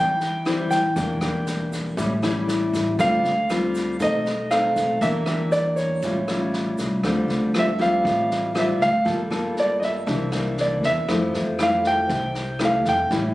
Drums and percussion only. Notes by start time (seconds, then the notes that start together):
0.21 snare, shaker
0.46 cross-stick, snare
0.71 kick, snare, shaker
0.96 kick, snare, shaker
1.21 cross-stick, snare, shaker
1.47 snare, shaker
1.72 kick, snare, shaker
1.97 kick, snare, shaker
2.23 cross-stick, snare, shaker
2.48 snare, shaker
2.74 kick, snare, shaker
2.99 kick, cross-stick, snare, shaker
3.25 snare, shaker
3.50 cross-stick, snare, shaker
3.75 kick, snare, shaker
4.00 kick, snare, shaker
4.26 snare, shaker
4.51 cross-stick, snare, shaker
4.76 kick, snare, shaker
5.01 kick, snare, shaker
5.26 cross-stick, snare, shaker
5.52 snare, shaker
5.77 kick, snare, shaker
6.02 kick, snare, shaker
6.28 cross-stick, snare, shaker
6.53 snare
6.78 kick, snare, shaker
7.03 kick, cross-stick, snare
7.29 snare
7.54 cross-stick, snare
7.80 kick, snare
8.05 kick, snare
8.31 snare
8.55 cross-stick, snare
8.81 kick, snare
9.06 kick, snare
9.32 cross-stick, snare
9.56 snare
9.82 kick, snare
10.07 kick, snare
10.32 cross-stick, snare
10.57 snare
10.83 kick, snare
11.09 kick, cross-stick, snare
11.34 snare
11.59 cross-stick, snare
11.84 kick, snare
12.09 kick, snare
12.35 snare
12.59 cross-stick, snare
12.85 kick, snare
13.11 kick, snare